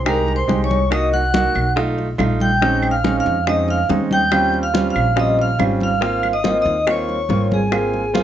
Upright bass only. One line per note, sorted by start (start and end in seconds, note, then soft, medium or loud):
0.00 0.45 C2 medium
0.48 1.49 C2 medium
1.55 2.15 B1 medium
2.18 3.19 A#1 medium
3.26 3.86 F2 medium
3.89 4.89 D#2 medium
4.95 5.55 A#1 medium
5.59 6.59 G#1 medium
6.65 7.25 D#2 medium
7.29 8.23 G#1 medium